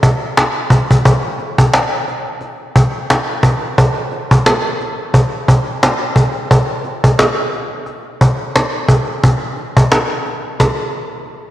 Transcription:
0.03 cajon bass
0.37 cajon slap
0.70 cajon bass
0.91 cajon bass
1.05 cajon bass
1.39 cajon slap
1.58 cajon bass
1.74 cajon slap
2.08 cajon slap
2.41 cajon slap
2.76 cajon bass
3.10 cajon slap
3.43 cajon bass
3.78 cajon bass
4.11 cajon slap
4.31 cajon bass
4.46 cajon slap
4.80 cajon slap
5.13 cajon bass, cajon slap
5.48 cajon bass
5.83 cajon slap
6.16 cajon bass
6.51 cajon bass
6.84 cajon slap
7.04 cajon bass
7.19 cajon slap
7.53 cajon slap
7.86 cajon slap
8.21 cajon bass
8.56 cajon slap
8.88 cajon bass
9.24 cajon bass
9.57 cajon slap
9.77 cajon bass
9.92 cajon slap
10.26 cajon slap
10.60 cajon bass, cajon slap

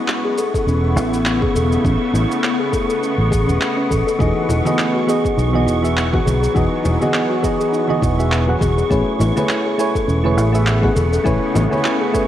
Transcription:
Already playing: C#3 A3 B3 E4 C#6
0.08 clap, shaker
0.25 G#4
0.38 A4, shaker
0.54 A4, kick, shaker
0.67 E1 C#4, shaker
0.96 A1 E4, shaker
1.14 shaker
1.26 clap, shaker
1.42 G#4, kick
1.55 E1 A4, shaker
1.71 A4, shaker
1.84 A1 C#4 D#5, kick, shaker
2.13 A1 E4, shaker
2.31 shaker
2.44 clap, shaker
2.60 G#4
2.73 A4, kick, shaker
2.89 A4, shaker
3.02 C#4, shaker
3.18 A1
3.31 G#4, kick, shaker
3.47 E1 C#4, shaker
3.61 clap, shaker
3.77 C#4
3.90 A1 A4, kick, shaker
4.07 A4, shaker
4.18 E1 E3 F#3 B3 D#4 F#4 G#4 D#5, kick, shaker
4.49 E1 E4, low conga, shaker
4.65 E3 B3 F#4 G#4 D#5, high conga, shaker
4.79 clap, shaker
4.95 F#4
5.07 E3 B3 F#4 G#4 D#5, shaker
5.24 G#4, kick, shaker
5.37 B1 D#4, shaker
5.53 E3 B3 F#4 G#4 D#5, high conga
5.66 E1 E4, shaker
5.82 E3 B3 F#4 G#4 E5, shaker
5.97 clap, shaker
6.12 E3 B3 F#4 G#4 F#5, kick, low conga
6.25 B1 G#4, high conga, shaker
6.42 G#4, shaker
6.54 E1 E3 B3 D#4 F#4 G#4 D#5, kick, shaker
6.84 E1 E4, low conga, shaker
7.00 E3 B3 F#4 G#4 D#5, high conga, shaker
7.14 clap, shaker
7.30 F#4
7.42 E3 B3 F#4 G#4 D#5, kick, shaker
7.60 G#4, shaker
7.72 D#4, shaker
7.88 E3 B3 F#4 G#4 D#5, high conga
8.02 E1 E4, kick, shaker
8.18 E3 B3 F#4 G#4 E5, shaker
8.32 clap, shaker
8.47 E3 B3 F#4 G#4 F#5, low conga
8.61 E1 G#4, kick, high conga, shaker
8.77 G#4, shaker
8.90 A1 C#3 A3 B3 C#4 E4 G#4 B4 C#5, kick, shaker
9.19 A1 E4, low conga, shaker
9.36 A3 E4 G#4 B4 C#5, high conga, shaker
9.49 clap, shaker
9.65 G#4
9.78 A3 E4 A4 B4 C#5 G#5, shaker
9.95 A4, kick, shaker
10.08 E1 C#4, shaker
10.24 A3 E4 G#4 B4 C#5, high conga
10.37 A1 E4, shaker
10.52 A3 E4 G#4 B4 E5, shaker
10.67 clap, shaker
10.82 A3 E4 G#4 B4 F#5, kick, low conga
10.96 E1 A4, high conga, shaker
11.13 A4, shaker
11.24 A1 A3 C#4 E4 B4 C#5 D#5 G#5, kick, shaker
11.55 A1 E4, low conga, shaker
11.70 A3 E4 B4 C#5 G#5, high conga, shaker
11.84 clap, shaker
12.01 G#4
12.12 A3 E4 A4 B4 C#5 G#5, kick, shaker

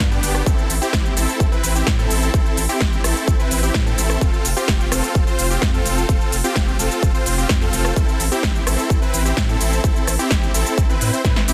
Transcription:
0.00 G2, shaker
0.11 B3 D4 G4, shaker
0.23 G1, open hi-hat, shaker
0.35 cross-stick, shaker
0.46 A1 C4 E4 A4, kick, shaker
0.59 shaker
0.70 A1, open hi-hat, shaker
0.82 C4 E4 G4, shaker
0.93 A1, kick, snare, shaker
1.06 shaker
1.17 A1 C4 E4 A4, open hi-hat, shaker
1.29 shaker
1.40 A1, kick, shaker
1.52 C4 E4 B4, shaker
1.64 A1, open hi-hat, shaker
1.75 C4 E4 G4, shaker
1.87 A2, kick, snare, shaker
1.99 C4 E4 A4, shaker
2.10 A1, open hi-hat, shaker
2.23 shaker
2.34 A1 C4 E4 A4, kick, shaker
2.46 shaker
2.57 A1, open hi-hat, shaker
2.69 C4 E4 G4, shaker
2.81 A1, kick, snare, shaker
2.93 shaker
3.04 A1 C4 E4 A4, cross-stick, open hi-hat, shaker
3.16 shaker
3.28 A1, kick, shaker
3.39 C4 E4 B4, shaker
3.51 A1, open hi-hat, shaker
3.63 C4 E4 G4, shaker
3.74 A2, kick, snare, shaker
3.86 C4 E4 A4, shaker
3.98 A1, open hi-hat, shaker
4.10 cross-stick, shaker
4.21 F1 C4 F4, kick, shaker
4.34 shaker
4.45 F1, open hi-hat, shaker
4.57 C4 F4 G4, shaker
4.68 F1, kick, snare, shaker
4.80 shaker
4.92 F1 C4 F4 A4, cross-stick, open hi-hat, shaker
5.04 shaker
5.15 F1, kick, shaker
5.27 C4 F4 C5, shaker
5.39 F1, open hi-hat, shaker
5.50 C4 F4 G4, shaker
5.62 F2, kick, snare, shaker
5.74 C4 F4 A4, shaker
5.86 F1, open hi-hat, shaker
5.98 shaker
6.09 F1 C4 F4 A4, kick, shaker
6.21 shaker
6.32 F1, open hi-hat, shaker
6.44 C4 F4 G4, shaker
6.56 F1, kick, snare, shaker
6.68 shaker
6.79 F1 C4 F4 A4, open hi-hat, shaker
6.91 shaker
7.03 F1, kick, shaker
7.14 C4 F4 C5, shaker
7.26 F1, open hi-hat, shaker
7.38 C4 F4 G4, shaker
7.49 F2, kick, snare, shaker
7.61 C4 F4 A4, shaker
7.73 F1, open hi-hat, shaker
7.85 cross-stick, shaker
7.96 A1 C4 E4 A4, kick, shaker
8.09 shaker
8.20 A1, open hi-hat, shaker
8.32 C4 E4 G4, shaker
8.43 A1, kick, snare, shaker
8.56 shaker
8.67 A1 C4 E4 A4, cross-stick, open hi-hat, shaker
8.79 shaker
8.90 A1, kick, shaker
9.02 C4 E4 B4, shaker
9.14 A1, open hi-hat, shaker
9.25 C4 E4 G4, shaker
9.37 A2, kick, snare, shaker
9.49 C4 E4 A4, shaker
9.61 A1, open hi-hat, shaker
9.73 shaker
9.84 A1 E4, kick, shaker
9.96 shaker
10.07 A1, cross-stick, open hi-hat, shaker
10.19 C4 E4 G4, shaker
10.31 A1, kick, snare, shaker
10.43 shaker
10.54 A1 C4 E4 A4, open hi-hat, shaker
10.66 shaker
10.78 A1, kick, shaker
10.89 C4 E4 B4, shaker
11.01 A2, open hi-hat, shaker
11.13 C4 E4 C5, shaker
11.25 A2 C4 E4 B4, kick, snare, shaker
11.36 snare, shaker
11.48 A1 C4 E4 G4, open hi-hat, shaker

